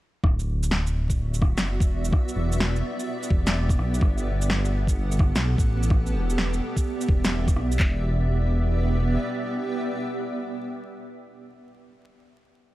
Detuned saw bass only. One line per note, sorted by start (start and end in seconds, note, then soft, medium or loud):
0.24 1.55 D1 medium
1.57 1.78 F#1 medium
1.80 2.11 E1 medium
2.36 2.82 E1 medium
3.31 3.80 E1 medium
3.78 4.00 B1 medium
4.01 5.33 G1 medium
5.35 5.56 B1 medium
5.58 6.16 A1 medium
6.14 6.60 E1 medium
7.09 7.57 E1 medium
7.56 7.78 B1 medium
7.80 9.17 E1 medium